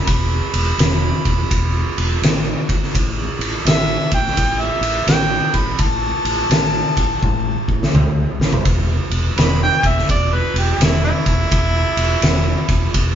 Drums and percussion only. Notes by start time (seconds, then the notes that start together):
0.07 kick, ride
0.54 ride
0.79 snare, ride
1.25 kick, ride
1.51 kick, ride
1.98 ride
2.23 snare, ride
2.69 kick, ride
2.83 snare
2.95 kick, ride
3.41 ride
3.66 snare, ride
4.12 kick, ride
4.27 snare
4.37 kick, ride
4.83 ride
5.08 snare, ride
5.54 kick, ride
5.79 kick, ride
6.25 ride
6.51 snare, ride
6.97 kick, ride
7.23 kick, high tom
7.69 kick
7.83 snare
7.95 mid tom
8.41 snare
8.53 floor tom
8.65 kick, ride
9.11 ride
9.38 snare, ride
9.83 kick, ride
9.98 snare
10.09 kick, ride
10.56 ride
10.81 snare, ride
11.26 kick, ride
11.52 kick, ride
11.97 ride
12.22 snare, ride
12.69 kick, ride
12.94 kick, ride